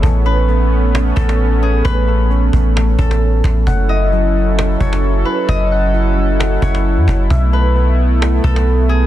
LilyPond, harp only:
\new Staff \with { instrumentName = "Harp" } { \time 4/4 \key a \lydian \tempo 4 = 132 r8 b'2 a'4 gis'8 | b'2~ b'8 a'4. | r8 dis''2 cis''4 b'8 | dis''2~ dis''8 cis''4. |
r8 b'2 a'4 gis'8 | }